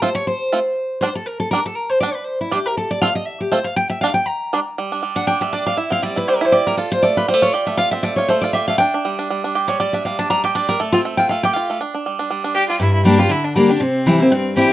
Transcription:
0.02 A3 C4 F4 C5
0.15 C#5
0.27 C5
0.53 A3 C4 F4
1.01 G3 D4 C5
1.15 A4
1.26 A#4
1.40 A4
1.51 G3 D4 A#4
1.66 A4
1.76 A#4
1.90 C5
2.00 G3 D4 D5
2.14 B4
2.25 C5
2.41 E4
2.51 G3 D4 G4
2.66 A#4
2.77 A4
2.91 D5
3.02 A3 C4 F4 F5
3.15 D#5
3.26 E5
3.40 G4
3.52 A3 C4 F4 C5
3.64 F5
3.76 G5
3.90 E5
4.01 G3 D4 F5
4.14 G5
4.26 A#5
4.53 G3 D4
4.78 G3
4.92 D4
5.03 G3
5.16 D4 F#5
5.27 D4 G5
5.41 G3 E5
5.53 D4 D5
5.66 G3 F5
5.77 E4 E5
5.90 C4 F5
6.03 G3 D5
6.16 E4 B4
6.28 G3 C5
6.36 A#4
6.41 E4 C5
6.52 G4 D5
6.67 G3 A#4
6.77 F4 A4
6.92 C5
7.03 A3 D5
7.17 F4 B4
7.28 G3 C5
7.34 A3
7.42 F4 C#5
7.54 G4 D5
7.67 A3 E5
7.77 F4 F5
7.91 C4 E5
8.03 A3 D5
8.16 F4 C#5
8.29 A3 C5
8.41 F4 D5
8.53 G4 E5
8.68 A3 F5
8.78 D4 G5
8.94 D4
9.05 G3
9.19 D4
9.30 G3
9.44 D4
9.55 G4
9.68 G3 C#5
9.80 G3 D5
9.93 D4 E5
10.05 G3 F5
10.19 D4 A5
10.30 G3 A#5
10.44 G4 G5
10.55 D4 D5
10.69 G3 A#4
10.80 A3 A4
10.92 C4 F4
11.05 A3
11.17 F4 G5
11.29 A3 F5
11.43 G4 G5
11.53 F4 F5
11.70 A3
11.81 D4
11.94 D4
12.06 G3
12.19 D4
12.30 G3
12.44 D4
12.55 G4
12.69 G3 F4
12.80 G2 E4
12.94 E4
13.05 G3 A#3 D4 G4
13.19 D4 F4 G4
13.29 D3 E4
13.45 D4
13.56 G3 A#3 D4 G4
13.69 D4 G4
13.80 C3 C4
14.06 E3 G3 C4 E4
14.20 A#3 C4 E4
14.31 G2 C4
14.56 E3 G3 C4 E4 G4

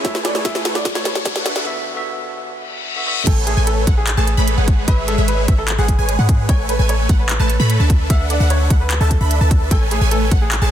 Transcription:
Already playing: riser
0.04 A3 E4 G#4 A4 B4 C#5 E5 G#5, kick, snare, closed hi-hat
0.15 snare
0.25 D5, snare, closed hi-hat
0.34 A3 E4 G#4 A4 B4 C#5 G#5, snare
0.45 E5, kick, snare, closed hi-hat
0.55 snare
0.65 A3 A4 B4 C#5 F#5, snare, closed hi-hat
0.75 D5, snare
0.85 kick, snare, closed hi-hat
0.95 A3 A4 B4 C#5 A5, snare
1.05 snare, closed hi-hat
1.15 snare
1.25 D4 A4 B4 E5 F#5, kick, snare, closed hi-hat
1.36 snare
1.46 snare, closed hi-hat
1.56 snare
1.65 D3 B3 F#4 E5
1.95 D3 B3 F#4 E5
2.46 reverse cymbal
2.96 D3 B3 F#4 E5
3.06 D3 B3 F#4 E5
3.27 A1 A3 A4 B4 C#5 G#5, kick, closed hi-hat, crash
3.47 G#4, closed hi-hat
3.57 A1 A3 A4 B4 C#5 G#5
3.67 A4, closed hi-hat
3.87 A1 A3 A4 B4 F#5, kick, closed hi-hat
3.97 G#4
4.07 clap, closed hi-hat
4.17 A1 A3 G#4 A4 B4 C#5 A5
4.27 closed hi-hat
4.37 A1 A3 A4 B4 C#5 B5
4.48 closed hi-hat
4.58 G#1 G#3 G#4 B4 C#5 F#5
4.68 kick, closed hi-hat
4.88 G#1 G#3 G#4 B4 C#5 E5, kick, closed hi-hat
5.08 A4, closed hi-hat
5.18 G#1 G#3 G#4 B4 C#5 E5
5.28 B4, closed hi-hat
5.48 G#1 G#3 B4 E5, kick, closed hi-hat
5.58 A4
5.68 clap, closed hi-hat
5.78 G#1 G#3 G#4 B4 C#5 F#5
5.88 kick, closed hi-hat
5.99 G#1 G#3 G#4 B4 C#5 G#5
6.09 closed hi-hat
6.19 G#2 G#3 G#4 B4 C#5 F#5
6.29 kick, closed hi-hat
6.49 A1 A3 C#5 G#5, kick, closed hi-hat
6.69 B4, closed hi-hat
6.79 A1 A3 A4 B4 C#5 G#5
6.89 C#5, closed hi-hat
7.09 A1 A3 B4 C#5 F#5, kick, closed hi-hat
7.19 B4
7.29 clap, closed hi-hat
7.40 A1 A3 A4 B4 C#5 A5
7.50 closed hi-hat
7.60 A2 A3 A4 B4 C#5 B5
7.70 closed hi-hat
7.80 D2 D4 A4 B4 E5 A5
7.90 kick, closed hi-hat
8.10 D2 D4 A4 B4 E5 F#5, kick, closed hi-hat
8.30 D5, closed hi-hat
8.40 D2 D4 A4 B4 E5 F#5
8.50 C#5, closed hi-hat
8.70 D2 D4 A4 B4 E5 F#5, kick, closed hi-hat
8.81 B4
8.91 clap, closed hi-hat
9.01 D2 D4 A4 B4 E5 A5
9.11 kick, closed hi-hat
9.21 D2 D4 A4 B4 E5 B5
9.31 closed hi-hat
9.41 D2 D4 A4 B4 E5 A5
9.51 kick, closed hi-hat
9.71 A1 A3 A4 G#5, kick, closed hi-hat, ride
9.91 G#4, closed hi-hat
10.01 A1 A3 A4 B4 C#5 G#5
10.11 A4, closed hi-hat
10.31 A1 A4 C#5 F#5, kick, closed hi-hat
10.42 G#4
10.52 clap, closed hi-hat
10.62 A1 A3 G#4 A4 B4 C#5 A5

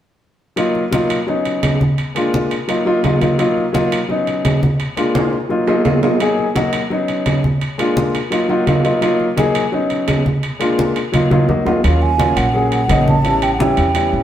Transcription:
0.56 F#3 A#3 D#4 F4, high conga, high timbale
0.75 high conga
0.91 F#3 A#3 D#4 F4, high conga, high timbale, low timbale
1.10 high conga, high timbale
1.27 F#3 B3 C#4 D#4, high conga
1.45 high conga, high timbale
1.63 high conga, high timbale, low timbale
1.81 high conga
1.98 high conga, high timbale
2.15 G#3 A#3 D4 F4, high conga, high timbale
2.34 high conga, low timbale
2.51 high conga, high timbale
2.68 F#3 A#3 D#4 F4, high conga, high timbale
2.85 F#3 A#3 D#4 F4, high conga
3.03 F#3 A#3 D#4 F4, high conga, high timbale, low timbale
3.20 F#3 A#3 D#4 F4, high conga, high timbale
3.38 F#3 A#3 D#4 F4, high conga, high timbale
3.57 high conga
3.73 F#3 A#3 D#4 F4, high conga, high timbale, low timbale
3.92 high conga, high timbale
4.09 F#3 B3 C#4 D#4, high conga
4.27 high conga, high timbale
4.45 high conga, high timbale, low timbale
4.63 high conga
4.80 high conga, high timbale
4.97 G#3 A#3 D4 F4, high conga, high timbale
5.15 high conga, high timbale
5.33 high conga
5.49 F#3 A#3 D#4 F4, high conga
5.67 F#3 A#3 D#4 F4, high conga, low timbale
5.84 F#3 A#3 D#4 F4, high conga, low timbale
6.02 F#3 A#3 D#4 F4, low timbale
6.20 F#3 A#3 D#4 G#4, high conga, high timbale
6.39 high conga
6.55 F#3 A#3 D#4 F#4, high conga, high timbale, low timbale
6.73 high conga, high timbale
6.90 F#3 B3 C#4 D#4, high conga
7.08 high conga, high timbale
7.26 high conga, high timbale, low timbale
7.44 high conga
7.61 high conga, high timbale
7.78 G#3 A#3 D4 F4, high conga, high timbale
7.97 high conga, low timbale
8.15 high conga, high timbale
8.30 F#3 A#3 D#4 F4, high conga, high timbale
8.49 F#3 A#3 D#4 F4 F#5, high conga
8.66 F#3 A#3 D#4 F4 F5, high conga, high timbale, low timbale
8.84 F#3 A#3 D#4 F4 D#5, high timbale
9.01 F#3 A#3 D#4 F4, high conga, high timbale
9.20 high conga
9.36 F#3 A#3 D#4 G#4, high conga, high timbale, low timbale
9.55 high conga, high timbale
9.72 F#3 B3 C#4 D#4, high conga
9.90 high conga, high timbale
10.08 high conga, high timbale, low timbale
10.26 high conga
10.43 high conga, high timbale
10.59 G#3 A#3 D4 F4, high conga, high timbale
10.78 high conga, low timbale
10.96 high conga, high timbale
11.12 F#3 A#3 D#4 F4, high conga, high timbale
11.30 F#3 A#3 D#4 F4, high conga, high timbale
11.48 F#3 A#3 D#4 F#4, low conga
11.65 F#3 A#3 D#4 F4 F#5, low conga, low timbale
11.83 D#2 F#3 A#3 C#4 F4 F5, high conga, high timbale
12.02 G#5, high conga
12.18 F#3 A#3 C#4 F4, high conga, high timbale, low timbale
12.36 A#1 F#5, high conga, high timbale
12.53 F#3 A#3 C#4 G#4, high conga
12.72 F#5, high conga, high timbale
12.88 A1 F#3 A#3 C#4 D#4, high conga, high timbale, low timbale
13.08 A5, high conga
13.24 G3 B3 C#4 E4, high conga, high timbale
13.42 G5, high conga, high timbale
13.54 F#5
13.59 G3 B3 C#4 E4 G5, high conga, low timbale
13.77 E2, high conga, high timbale
13.94 G3 B3 C#4 E4, high conga, high timbale
14.13 A1, high conga

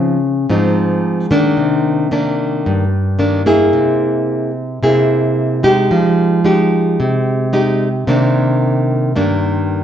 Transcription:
Already playing: C#3 F3 C4 D#4
0.49 G#2 F3 C4 D#4
1.31 D#3 A#3 D4
1.57 C3
2.11 D#3 A#3 D4
2.66 G2
3.19 D#3 A#3 D4
3.46 A#3 E4 G#4
3.73 C3
4.83 C3 A#3 E4 G#4
5.63 G#3 D#4 G4
5.91 F3
6.44 G#3 D#4 G4
7.00 C3
7.53 G#3 D#4 G4
8.07 C3 D#3 A#3 D4
9.16 G2 D#3 A#3 D4

